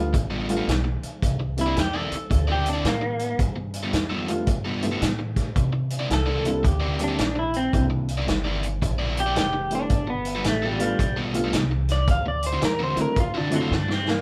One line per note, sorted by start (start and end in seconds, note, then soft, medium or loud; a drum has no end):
0.00 0.12 D2 medium
0.00 0.12 G3 medium
0.00 0.12 A3 medium
0.00 0.12 B3 medium
0.00 0.12 D4 medium
0.00 0.13 F4 medium
0.13 0.67 A1 medium
0.13 muted overdriven electric guitar stroke soft
0.13 kick loud
0.13 closed hi-hat medium
0.30 0.52 G3 medium
0.30 0.51 B3 medium
0.30 0.51 F4 medium
0.30 0.51 A4 medium
0.48 0.66 G3 medium
0.48 0.66 A3 medium
0.48 0.66 B3 medium
0.48 0.67 D4 medium
0.48 0.67 F4 medium
0.48 closed hi-hat medium
0.57 0.73 G3 medium
0.57 0.73 B3 medium
0.57 0.73 F4 medium
0.57 0.73 A4 medium
0.67 1.00 B1 medium
0.67 snare loud
0.67 closed hi-hat medium
0.84 muted overdriven electric guitar stroke soft
1.02 muted upright bass stroke soft
1.02 closed hi-hat medium
1.22 1.75 C2 medium
1.22 kick loud
1.22 closed hi-hat medium
1.40 muted overdriven electric guitar stroke soft
1.57 1.75 G3 medium
1.57 1.75 A#3 medium
1.57 1.75 C4 medium
1.57 1.75 D4 medium
1.57 1.76 E4 medium
1.57 closed hi-hat medium
1.61 1.80 E4 medium
1.66 1.75 C4 medium
1.66 1.75 E4 medium
1.66 1.75 A#4 medium
1.66 1.75 D5 medium
1.76 2.09 E2 medium
1.76 1.97 G4 medium
1.76 muted overdriven electric guitar stroke soft
1.76 snare loud
1.76 closed hi-hat medium
1.94 2.15 C4 medium
1.94 2.15 E4 medium
1.94 2.48 A4 medium
1.94 2.14 A#4 medium
1.94 2.14 D5 medium
2.11 muted upright bass stroke soft
2.11 closed hi-hat medium
2.30 2.83 D2 medium
2.30 muted overdriven electric guitar stroke soft
2.30 kick loud
2.30 closed hi-hat medium
2.48 2.69 C4 medium
2.48 2.69 E4 medium
2.48 2.68 A#4 medium
2.48 2.68 D5 medium
2.52 2.68 G4 medium
2.66 2.86 D4 medium
2.66 closed hi-hat medium
2.73 2.90 C4 medium
2.73 2.90 E4 medium
2.73 2.90 A#4 medium
2.73 2.89 D5 medium
2.85 3.37 A2 medium
2.85 3.39 A#3 medium
2.85 snare loud
2.85 closed hi-hat medium
3.01 muted overdriven electric guitar stroke soft
3.19 closed hi-hat medium
3.39 3.92 G2 medium
3.39 kick loud
3.39 closed hi-hat medium
3.56 muted overdriven electric guitar stroke soft
3.74 closed hi-hat medium
3.83 3.92 G3 medium
3.83 3.92 B3 medium
3.83 3.93 F4 medium
3.83 3.93 A4 medium
3.93 4.46 F2 medium
3.93 muted overdriven electric guitar stroke soft
3.93 snare loud
3.93 closed hi-hat medium
4.10 4.31 G3 medium
4.10 4.31 B3 medium
4.10 4.31 F4 medium
4.10 4.31 A4 medium
4.27 4.45 G3 medium
4.27 4.45 A3 medium
4.27 4.46 B3 medium
4.27 4.46 D4 medium
4.27 4.46 F4 medium
4.27 closed hi-hat medium
4.47 5.00 G2 medium
4.47 muted overdriven electric guitar stroke soft
4.47 kick loud
4.47 closed hi-hat medium
4.65 4.86 G3 medium
4.65 4.86 B3 medium
4.65 4.85 F4 medium
4.65 4.85 A4 medium
4.82 5.00 G3 medium
4.82 5.00 A3 medium
4.82 5.00 B3 medium
4.82 5.00 D4 medium
4.82 5.01 E4 medium
4.82 closed hi-hat medium
4.91 5.07 G3 medium
4.91 5.07 B3 medium
4.91 5.07 F4 medium
4.91 5.07 A4 medium
5.02 5.54 A2 medium
5.02 snare loud
5.02 closed hi-hat medium
5.19 muted overdriven electric guitar stroke soft
5.36 kick medium
5.36 snare soft
5.36 closed hi-hat medium
5.56 6.09 C3 medium
5.56 kick loud
5.56 closed hi-hat medium
5.73 muted overdriven electric guitar stroke soft
5.90 closed hi-hat medium
5.99 6.08 C4 medium
5.99 6.09 E4 medium
5.99 6.09 A#4 medium
5.99 6.09 D5 medium
6.09 6.63 C2 medium
6.09 muted overdriven electric guitar stroke soft
6.09 snare loud
6.09 closed hi-hat medium
6.13 6.67 A4 medium
6.26 6.48 C4 medium
6.26 6.48 E4 medium
6.26 6.47 A#4 medium
6.26 6.47 D5 medium
6.44 6.62 G3 medium
6.44 6.63 A#3 medium
6.44 6.63 C4 medium
6.44 6.63 D4 medium
6.44 6.63 E4 medium
6.44 closed hi-hat medium
6.63 7.17 D2 medium
6.63 7.01 G4 medium
6.63 muted overdriven electric guitar stroke soft
6.63 kick loud
6.63 closed hi-hat medium
6.80 7.02 C4 medium
6.80 7.02 E4 medium
6.80 7.02 A#4 medium
6.80 7.01 D5 medium
6.99 7.17 G3 medium
6.99 7.17 A#3 medium
6.99 7.17 C4 medium
6.99 7.18 D4 medium
6.99 7.18 G4 medium
6.99 closed hi-hat medium
7.04 7.38 D4 medium
7.08 7.24 C4 medium
7.08 7.24 E4 medium
7.08 7.24 A#4 medium
7.08 7.24 D5 medium
7.19 7.72 A#1 medium
7.19 snare loud
7.19 closed hi-hat medium
7.36 7.56 E4 medium
7.36 muted overdriven electric guitar stroke soft
7.54 7.85 C4 medium
7.54 closed hi-hat medium
7.73 8.26 C2 medium
7.73 8.04 G3 medium
7.73 8.05 A#3 medium
7.73 8.05 C4 medium
7.73 8.05 D4 medium
7.73 8.05 E4 medium
7.73 kick loud
7.73 closed hi-hat medium
7.90 muted overdriven electric guitar stroke soft
8.08 closed hi-hat medium
8.18 8.26 C4 medium
8.18 8.26 E4 medium
8.18 8.26 A#4 medium
8.18 8.26 D5 medium
8.27 8.80 G1 medium
8.27 muted overdriven electric guitar stroke soft
8.27 snare loud
8.27 closed hi-hat medium
8.44 8.66 C4 medium
8.44 8.65 E4 medium
8.44 8.65 A#4 medium
8.44 8.65 D5 medium
8.63 closed hi-hat medium
8.82 9.35 A#1 medium
8.82 muted overdriven electric guitar stroke soft
8.82 kick loud
8.82 closed hi-hat medium
8.99 9.20 C4 medium
8.99 9.20 E4 medium
8.99 9.20 A#4 medium
8.99 9.19 D5 medium
9.17 9.37 G4 medium
9.17 closed hi-hat medium
9.26 9.42 C4 medium
9.26 9.42 E4 medium
9.26 9.41 A#4 medium
9.26 9.41 D5 medium
9.36 9.89 F1 medium
9.36 9.73 G4 medium
9.36 snare loud
9.36 closed hi-hat medium
9.53 muted overdriven electric guitar stroke medium
9.70 9.88 G3 medium
9.70 9.88 A3 medium
9.70 9.89 B3 medium
9.70 9.89 D4 medium
9.70 9.89 E4 medium
9.70 closed hi-hat medium
9.75 10.09 D4 medium
9.90 10.43 G1 medium
9.90 kick loud
9.90 closed hi-hat medium
10.07 10.44 B3 medium
10.07 muted overdriven electric guitar stroke soft
10.25 closed hi-hat medium
10.35 10.44 G3 medium
10.35 10.44 B3 medium
10.35 10.45 F4 medium
10.35 10.45 A4 loud
10.44 10.97 A1 medium
10.44 10.66 A3 medium
10.44 muted overdriven electric guitar stroke medium
10.44 snare loud
10.44 closed hi-hat medium
10.62 10.83 G3 medium
10.62 11.17 G3 medium
10.62 10.83 B3 medium
10.62 10.83 F4 medium
10.62 10.83 A4 medium
10.78 10.97 G3 medium
10.78 10.97 A3 medium
10.78 10.97 B3 medium
10.78 10.97 D4 medium
10.78 10.98 F4 medium
10.78 closed hi-hat medium
10.99 11.52 B1 medium
10.99 muted overdriven electric guitar stroke soft
10.99 kick loud
10.99 closed hi-hat medium
11.16 11.37 G3 medium
11.16 11.37 B3 medium
11.16 11.37 F4 medium
11.16 11.37 A4 medium
11.33 11.51 G3 medium
11.33 11.52 A3 medium
11.33 11.52 B3 medium
11.33 11.52 D4 medium
11.33 11.52 F4 medium
11.33 closed hi-hat medium
11.44 11.59 G3 medium
11.44 11.59 B3 medium
11.44 11.59 F4 medium
11.44 11.59 A4 medium
11.53 12.06 C2 medium
11.53 snare loud
11.53 closed hi-hat medium
11.71 muted overdriven electric guitar stroke medium
11.89 12.08 D5 medium
11.89 snare soft
11.89 closed hi-hat medium
12.08 12.61 D2 medium
12.08 12.27 F5 medium
12.08 kick loud
12.08 closed hi-hat medium
12.26 12.45 D5 medium
12.26 muted overdriven electric guitar stroke soft
12.43 12.63 C5 medium
12.43 closed hi-hat medium
12.53 12.61 D3 medium
12.53 12.61 C4 medium
12.53 12.62 E4 medium
12.53 12.62 F#4 medium
12.62 12.95 E2 medium
12.62 12.81 A#4 medium
12.62 muted overdriven electric guitar stroke soft
12.62 snare loud
12.62 closed hi-hat medium
12.79 13.00 D3 medium
12.79 13.00 C4 medium
12.79 13.00 E4 medium
12.79 13.00 F#4 medium
12.83 13.00 C5 medium
12.96 13.14 F#3 medium
12.96 13.14 A3 medium
12.96 13.15 C4 medium
12.96 13.15 D4 medium
12.96 13.15 E4 medium
12.96 muted upright bass stroke soft
12.96 closed hi-hat medium
13.01 13.18 A#4 medium
13.16 13.69 F#2 medium
13.16 13.37 F4 medium
13.16 muted overdriven electric guitar stroke soft
13.16 kick loud
13.16 closed hi-hat medium
13.34 13.55 D3 medium
13.34 13.55 C4 medium
13.34 13.55 D4 medium
13.34 13.55 E4 medium
13.34 13.54 F#4 medium
13.50 13.68 F#3 medium
13.50 13.69 A3 medium
13.50 13.69 C4 medium
13.50 13.69 D4 medium
13.50 13.69 E4 medium
13.50 closed hi-hat medium
13.55 13.73 F4 medium
13.61 13.77 D3 medium
13.61 13.76 C4 medium
13.61 13.76 E4 medium
13.61 13.76 F#4 medium
13.71 14.21 G2 medium
13.71 13.92 D4 medium
13.71 snare medium
13.88 14.08 C4 medium
13.88 muted overdriven electric guitar stroke medium
13.88 snare medium
14.08 14.21 A#3 medium
14.08 snare loud